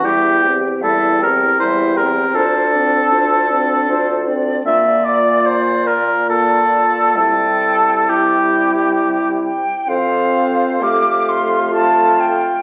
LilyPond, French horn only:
\new Staff \with { instrumentName = "French horn" } { \time 3/4 \key f \major \tempo 4 = 73 g8 c'8 g8 c'8 g8 c'8 | d'8 c'8 d'8 c'8 d'8 c'8 | bes2 bes4 | g4 g4. r8 |
c'4 a2 | }